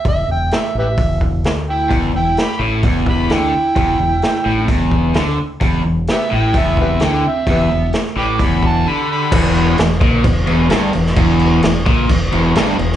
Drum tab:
CC |----------------|----------------|----------------|----------------|
HH |o---o---o---o---|o---o---o---o---|o---o---o---o---|o---o---o---o---|
SD |----o-------o---|----o-------o---|----o-------o---|----o-------o---|
BD |o-------o-o-----|o-------o-o-----|o-------o-o-----|o-------o-o-----|

CC |----------------|x-x-x-x-x-x-x-x-|x-x-x-x-x-x-x-x-|
HH |o---o---o-------|----------------|----------------|
SD |----o-----------|----o-------o--o|----o-------o--o|
BD |o-------o-o-----|o-----o-o-------|o-----o-o-------|